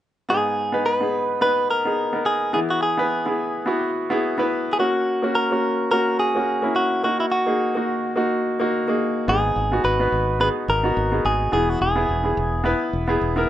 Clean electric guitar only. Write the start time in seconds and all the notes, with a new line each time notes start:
0.30 G#4
0.86 B4
1.42 B4
1.71 A#4
2.26 G#4
2.54 G#4
2.70 F#4
2.83 G#4
4.73 G#4
4.80 F#4
5.35 A#4
5.91 A#4
6.20 G#4
6.76 F#4
7.04 F#4
7.20 E4
7.32 F#4
9.29 G#4
9.85 B4
10.41 B4
10.70 A#4
11.26 G#4
11.53 G#4
11.69 F#4
11.82 G#4